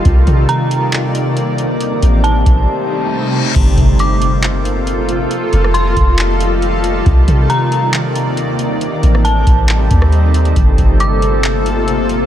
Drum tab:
CC |----------------|----------------|x---------------|----------------|
HH |x-x-x-x-x-x-x-x-|x-x-x-x---------|x-x-x-x-x-x-x-x-|x-x-x-x-x-x-x-x-|
CP |--------x-------|----------------|--------x-------|--------x-------|
SD |----------------|----------------|----------------|---r------------|
BD |o-o-------------|------o---------|o-o-------------|------o---------|

CC |----------------|----------------|----------------|
HH |x-x-x-x-x-x-x-x-|x-x-x-x-x-x-x-xx|x-x-x-x-x-x-x-x-|
CP |--------x-------|--------x-------|--------x-------|
SD |----------------|---r-------r----|----------------|
BD |o-o-------------|------o---o-----|o-o-------------|